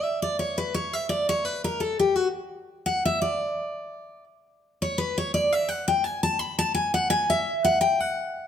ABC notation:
X:1
M:3/4
L:1/8
Q:"Swing" 1/4=170
K:D
V:1 name="Steel-string acoustic guitar"
e d c B c e | d c B _B A G | F z3 f e | d6 |
z3 c B c | d e f g ^g a | b a ^g f g e- | e f g f3 |]